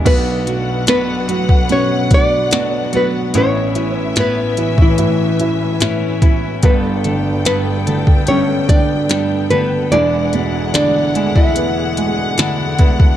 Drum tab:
CC |x---------------|----------------|----------------|----------------|
HH |x-x-x-x-x-x-x-x-|x-x-x-x-x-x-x-x-|x-x-x-x-x-x-x-x-|x-x-x-x-x-x-x-x-|
SD |----o-------o---|----o-------o---|----o-------o---|----o-------o---|
BD |o------o--o-----|-------o------o-|o------o--o-----|-------o------oo|